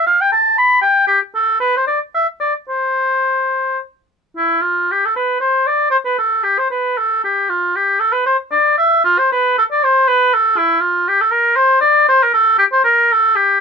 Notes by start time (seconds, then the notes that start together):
0.07 F5
0.21 G5
0.32 A5
0.58 B5
0.81 G5
1.07 G4
1.35 A4
1.60 B4
1.77 C5
1.87 D5
2.14 E5
2.40 D5
2.69 C5
4.37 E4
4.61 F4
4.92 G4
5.06 A4
5.16 B4
5.40 C5
5.67 D5
5.91 C5
6.05 B4
6.18 A4
6.43 G4
6.58 C5
6.70 B4
6.98 A4
7.24 G4
7.49 F4
7.76 G4
8.00 A4
8.13 B4
8.26 C5
8.51 D5
8.78 E5
9.04 F4
9.18 C5
9.32 B4
9.58 A4
9.72 D5
9.83 C5
10.08 B4
10.34 A4
10.57 E4
10.81 F4
11.08 G4
11.21 A4
11.31 A#4
11.56 C5
11.81 D5
12.09 C5
12.23 A#4
12.34 A4
12.58 G4
12.72 C5
12.84 A#4
13.12 A4
13.35 G4